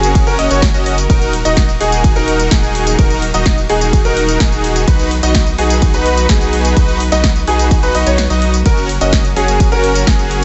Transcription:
Already playing: sub bass F#1, string section C#3 F#3 A#3 F#4 A#4, supersaw synth C#4 F#4 G#4, grand piano G#4
0.03 closed hi-hat, tambourine
0.15 kick, closed hi-hat, ride, tambourine
0.27 sub bass F#1, supersaw synth C#4 F#4 A#4, grand piano A#4, closed hi-hat, tambourine
0.39 sub bass F#1, supersaw synth C#4 F#4 D#5, grand piano D#5, open hi-hat
0.51 sub bass F#1, supersaw synth C#4 F#4 C#5, grand piano C#5, closed hi-hat, tambourine
0.62 kick, snare, closed hi-hat, ride, tambourine
0.74 sub bass F#1, supersaw synth C#4 F#4 D#5, grand piano D#5, closed hi-hat, tambourine
0.86 open hi-hat
0.98 closed hi-hat, tambourine
1.10 sub bass D#1, string section D#3 F#3 A#3, supersaw synth D#4 F#4 A#4, grand piano A#4, kick, closed hi-hat, ride, tambourine
1.22 closed hi-hat, tambourine
1.33 open hi-hat
1.45 sub bass D#1, supersaw synth D#4 F#4 D#5, grand piano D#5, closed hi-hat, tambourine
1.57 kick, snare, closed hi-hat, ride, tambourine
1.69 closed hi-hat, tambourine
1.80 sub bass D#1, supersaw synth D#4 F#4 G#4, grand piano G#4, open hi-hat
1.92 closed hi-hat, tambourine
2.04 kick, closed hi-hat, ride, tambourine
2.16 sub bass D#1, supersaw synth D#4 F#4 A#4, grand piano A#4, closed hi-hat, tambourine
2.28 open hi-hat
2.40 closed hi-hat, tambourine
2.51 sub bass D#1, supersaw synth D#4 F#4 G#4, grand piano G#4, kick, snare, closed hi-hat, ride, tambourine
2.63 closed hi-hat, tambourine
2.75 open hi-hat
2.87 closed hi-hat, tambourine
2.99 sub bass D#1, supersaw synth D#4 F#4 A#4, grand piano A#4, kick, closed hi-hat, ride, tambourine
3.10 closed hi-hat, tambourine
3.22 open hi-hat
3.34 sub bass D#1, supersaw synth D#4 F#4 D#5, grand piano D#5, closed hi-hat, tambourine
3.46 kick, snare, closed hi-hat, ride, tambourine
3.58 closed hi-hat, tambourine
3.70 sub bass D#1, supersaw synth D#4 F#4 G#4, grand piano G#4, open hi-hat
3.81 closed hi-hat, tambourine
3.93 kick, closed hi-hat, ride, tambourine
4.05 sub bass D#1, supersaw synth D#4 F#4 A#4, grand piano A#4, closed hi-hat, tambourine
4.17 open hi-hat
4.29 closed hi-hat, tambourine
4.40 sub bass D#1, supersaw synth D#4 F#4 G#4, grand piano G#4, kick, snare, closed hi-hat, ride, tambourine
4.52 closed hi-hat, tambourine
4.64 open hi-hat
4.76 closed hi-hat, tambourine
4.88 sub bass B1, string section F#3 B3 F#4 B4, supersaw synth D#4 F#4 B4, grand piano B4, kick, closed hi-hat, ride, tambourine
4.99 closed hi-hat, tambourine
5.11 open hi-hat
5.23 sub bass B1, supersaw synth D#4 F#4 D#5, grand piano D#5, closed hi-hat, tambourine
5.35 kick, snare, closed hi-hat, ride, tambourine
5.47 closed hi-hat, tambourine
5.58 sub bass B1, supersaw synth D#4 F#4 G#4, grand piano G#4, open hi-hat
5.70 closed hi-hat, tambourine
5.82 kick, closed hi-hat, ride, tambourine
5.94 sub bass B1, supersaw synth D#4 F#4 B4, grand piano B4, closed hi-hat, tambourine
6.06 open hi-hat
6.18 closed hi-hat, tambourine
6.29 sub bass B1, supersaw synth D#4 F#4 G#4, grand piano G#4, kick, snare, closed hi-hat, ride, tambourine
6.41 closed hi-hat, tambourine
6.53 open hi-hat
6.65 closed hi-hat, tambourine
6.77 sub bass B1, supersaw synth D#4 F#4 B4, grand piano B4, kick, closed hi-hat, ride, tambourine
6.88 closed hi-hat, tambourine
7.00 open hi-hat
7.12 sub bass B1, supersaw synth D#4 F#4 D#5, grand piano D#5, snare, closed hi-hat, tambourine
7.24 kick, snare, closed hi-hat, ride, tambourine
7.36 closed hi-hat, tambourine
7.47 sub bass B1, supersaw synth D#4 F#4 G#4, grand piano G#4, open hi-hat
7.59 closed hi-hat, tambourine
7.71 kick, closed hi-hat, ride, tambourine
7.83 sub bass B1, supersaw synth D#4 F#4 B4, grand piano B4, closed hi-hat, tambourine
7.95 sub bass B1, supersaw synth D#4 F#4 D#5, grand piano D#5, open hi-hat
8.07 sub bass B1, supersaw synth D#4 F#4 C#5, grand piano C#5, closed hi-hat, tambourine
8.18 snare, closed hi-hat, ride, tambourine
8.30 sub bass B1, supersaw synth D#4 F#4 D#5, grand piano D#5, closed hi-hat, tambourine
8.42 open hi-hat
8.54 closed hi-hat, tambourine
8.66 sub bass F#1, string section C#3 A#3 A#4, supersaw synth C#4 F#4 A#4, grand piano A#4, kick, closed hi-hat, ride, tambourine
8.77 closed hi-hat, tambourine
8.89 open hi-hat
9.01 sub bass F#1, supersaw synth C#4 F#4 D#5, grand piano D#5, closed hi-hat, tambourine
9.13 kick, snare, closed hi-hat, ride, tambourine
9.25 closed hi-hat, tambourine
9.36 sub bass F#1, supersaw synth C#4 F#4 G#4, grand piano G#4, open hi-hat
9.48 closed hi-hat, tambourine
9.60 kick, closed hi-hat, ride, tambourine
9.72 sub bass F#1, supersaw synth C#4 F#4 A#4, grand piano A#4, closed hi-hat, tambourine
9.84 open hi-hat
9.95 closed hi-hat, tambourine
10.07 sub bass F#1, supersaw synth C#4 F#4 G#4, grand piano G#4, kick, snare, closed hi-hat, ride, tambourine
10.19 closed hi-hat, tambourine
10.31 open hi-hat

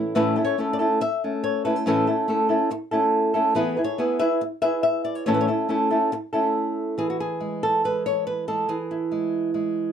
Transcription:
Already playing: nylon-string guitar A2 E3 A3 C#4 E4 C#5
0.15 nylon-string guitar A2 E3 A3 C#4 E4 A4 B4
0.36 nylon-string guitar A3 C#4 E4 A4
0.44 nylon-string guitar C#5
0.58 nylon-string guitar A3 C#4 E4 A4
0.73 nylon-string guitar D5
0.79 nylon-string guitar A3 C#4 E4 A4
1.01 nylon-string guitar E5, muted nylon-string guitar stroke
1.24 nylon-string guitar A3 C#4
1.44 nylon-string guitar C#5
1.65 nylon-string guitar A3 C#4 E4 A4 B4
1.76 nylon-string guitar A4
1.86 nylon-string guitar A2 E3 A3 C#4 E4 A4
2.07 nylon-string guitar A3 C#4 E4 A4
2.28 nylon-string guitar A3 C#4 E4 A4
2.49 nylon-string guitar A3 C#4 E4 A4
2.71 muted nylon-string guitar stroke
2.91 nylon-string guitar A3 C#4 E4 A4
3.34 nylon-string guitar A3 C#4 E4 A4
3.55 nylon-string guitar E3 B3 E4 G#4 B4
3.77 nylon-string guitar E4 G#4 B4
3.84 nylon-string guitar C#5
3.98 nylon-string guitar B3 E4 G#4 B4
4.19 nylon-string guitar E4 G#4 B4 E5
4.41 muted nylon-string guitar stroke
4.62 nylon-string guitar E4 G#4 B4 E5
4.83 nylon-string guitar E5
5.04 nylon-string guitar D5
5.15 nylon-string guitar C#5
5.26 nylon-string guitar A2 E3 A3 C#4 E4 A4 C#5
5.34 nylon-string guitar B4
5.41 nylon-string guitar C#5
5.48 nylon-string guitar A3 C#4 E4 A4
5.69 nylon-string guitar A3 C#4 E4 A4
5.90 nylon-string guitar A3 C#4 E4 A4
6.12 muted nylon-string guitar stroke
6.33 nylon-string guitar A3 C#4 E4 A4
6.98 nylon-string guitar E3 G#4
7.10 nylon-string guitar F#4
7.20 nylon-string guitar G#4
7.41 nylon-string guitar G#3
7.63 nylon-string guitar A4
7.84 nylon-string guitar G#3 B4
8.06 nylon-string guitar C#5
8.27 nylon-string guitar B4
8.48 nylon-string guitar G#3 A4
8.69 nylon-string guitar E3 G#4
8.91 nylon-string guitar E4
9.12 nylon-string guitar G#3
9.54 nylon-string guitar G#3

